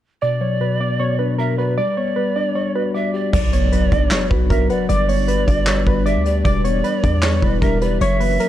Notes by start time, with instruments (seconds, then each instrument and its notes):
0.22 tine electric piano B2, pan flute D5, synth keys D5
0.41 tine electric piano F#3, synth keys C#5
0.61 tine electric piano B2, synth keys B4
0.80 tine electric piano B3, synth keys D5
0.99 tine electric piano B2, synth keys C#5
1.19 tine electric piano D4, synth keys B4
1.38 tine electric piano B2, synth keys A#4, pan flute E5
1.58 tine electric piano F#4, synth keys B4, pan flute D5
1.77 tine electric piano G3, pan flute D5, synth keys D5
1.97 tine electric piano B3, synth keys C#5
2.16 tine electric piano G3, synth keys B4
2.36 tine electric piano D4, synth keys D5
2.55 tine electric piano G3, synth keys C#5
2.75 tine electric piano F#4, synth keys B4
2.94 tine electric piano G3, synth keys D5, pan flute E5
3.14 tine electric piano G4, pan flute D5
3.33 808-style bass B1, tine electric piano F#3, analog synth pad F#3 B3 D4 B4, synth keys D5, pan flute D5, kick, crash, impact
3.53 tine electric piano B3, synth keys C#5, closed hi-hat
3.72 tine electric piano F#3, synth keys B4, closed hi-hat
3.92 808-style bass B1, tine electric piano D4, synth keys D5, kick, closed hi-hat
4.11 tine electric piano F#3, synth keys C#5, snare, clap, closed hi-hat
4.30 808-style bass B1, tine electric piano F#4, synth keys B4, kick
4.50 808-style bass B1, tine electric piano F#3, synth keys A#4, pan flute E5, kick, closed hi-hat
4.70 synth keys B4, pan flute D5, tine electric piano F#5, closed hi-hat
4.89 808-style bass G1, tine electric piano G3, analog synth pad G3 D4 F#4, synth keys D5, pan flute D5, closed hi-hat
5.09 tine electric piano B3, synth keys C#5, open hi-hat
5.28 tine electric piano G3, synth keys B4, closed hi-hat
5.47 808-style bass G1, tine electric piano D4, synth keys D5, kick, closed hi-hat
5.67 tine electric piano G3, synth keys C#5, snare, clap, closed hi-hat
5.87 808-style bass G1, tine electric piano F#4, synth keys B4, kick
6.06 tine electric piano G3, synth keys D5, pan flute E5, closed hi-hat
6.16 808-style bass D2
6.26 tine electric piano G4, pan flute D5, closed hi-hat
6.45 808-style bass E1, analog synth pad E3 D4 G4 B4, tine electric piano G3, synth keys D5, pan flute D5, kick, closed hi-hat
6.64 tine electric piano B3, synth keys C#5, closed hi-hat
6.84 tine electric piano G3, synth keys B4, closed hi-hat
7.04 808-style bass E2, tine electric piano D4, synth keys D5, kick, closed hi-hat
7.23 tine electric piano G3, synth keys C#5, snare, clap, closed hi-hat
7.42 808-style bass E1, tine electric piano E4, synth keys B4, kick
7.62 808-style bass E1, tine electric piano G3, synth keys A#4, pan flute E5, kick, closed hi-hat
7.81 tine electric piano G4, synth keys B4, pan flute D5, closed hi-hat
8.01 808-style bass F#1, tine electric piano F#3, analog synth pad C#4 F#4 A#4, synth keys C#5, pan flute E5, closed hi-hat
8.20 tine electric piano A#3, synth keys B4, open hi-hat
8.40 tine electric piano F#3, synth keys A#4, closed hi-hat